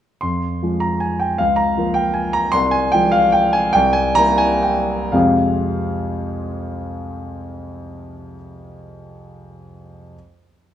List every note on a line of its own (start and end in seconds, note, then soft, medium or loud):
0.21 0.61 F2 soft
0.21 0.81 C6 medium
0.63 1.36 F3 soft
0.63 1.36 G#3 soft
0.63 1.36 F4 soft
0.80 1.01 A#5 medium
1.00 1.20 G#5 medium
1.20 1.39 G5 medium
1.38 1.76 C#2 soft
1.38 1.57 F5 medium
1.56 1.95 A#5 medium
1.77 2.50 F3 soft
1.77 2.51 A#3 soft
1.77 2.51 F4 soft
1.94 2.15 G5 medium
2.14 2.34 G#5 medium
2.33 2.53 A#5 medium
2.52 2.91 C2 medium
2.52 2.72 C6 loud
2.71 2.92 G#5 medium
2.92 3.72 F3 soft
2.92 3.72 G#3 soft
2.92 3.72 F4 soft
2.92 3.13 G5 medium
3.12 3.33 F5 medium
3.32 3.54 G5 medium
3.53 3.74 G#5 medium
3.73 4.16 C2 medium
3.73 3.95 G5 loud
3.93 4.17 G#5 medium
4.15 5.10 G3 soft
4.15 5.10 A#3 soft
4.15 5.10 E4 medium
4.15 4.40 A#5 loud
4.38 4.63 G#5 medium
4.63 5.13 G5 medium
5.12 8.35 F2 medium
5.12 8.35 C3 soft
5.12 8.35 G#3 soft
5.12 8.36 C4 medium
5.12 8.36 F4 soft
5.12 8.36 G#4 medium
5.12 8.34 F5 medium